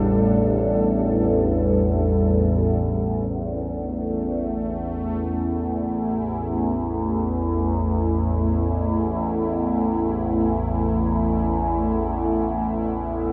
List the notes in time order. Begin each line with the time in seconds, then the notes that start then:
Already playing: A1 E2 A2 G3 D4 A4
3.25 A1 A3
3.30 E2
4.55 E4
7.54 A3